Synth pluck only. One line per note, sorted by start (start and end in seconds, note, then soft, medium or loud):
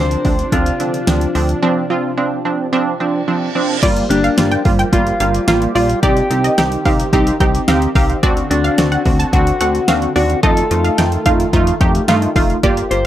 3.83 3.92 D5 loud
4.24 4.34 F5 medium
4.52 4.61 G5 medium
4.79 4.89 G5 medium
5.20 5.40 F5 medium
5.48 5.58 F5 medium
5.75 5.85 D5 medium
6.03 6.22 D5 loud
6.44 6.54 D#5 medium
6.58 6.77 G5 medium
6.86 6.95 F5 medium
7.41 7.50 G5 medium
7.68 7.78 F5 medium
7.96 8.05 F5 medium
8.23 8.33 D5 loud
8.64 8.74 F5 medium
8.92 9.02 F#5 medium
9.19 9.29 A5 medium
9.61 9.80 F#5 medium
9.88 9.98 F5 medium
10.16 10.25 D5 medium
10.43 10.62 D#5 loud
10.84 10.94 F5 medium
10.98 11.18 G5 medium
11.26 11.35 F5 medium
11.81 11.91 G5 medium
12.09 12.18 F5 medium
12.36 12.46 F5 medium
12.64 12.73 D5 loud